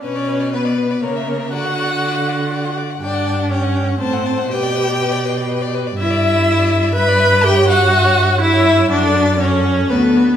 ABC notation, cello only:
X:1
M:3/4
L:1/8
Q:1/4=122
K:Glyd
V:1 name="Cello" clef=bass
B,,4 C,2 | D,6 | G,,4 A,,2 | B,,6 |
[K:Edor] G,,6- | G,,6 | F,,4 D,,2 |]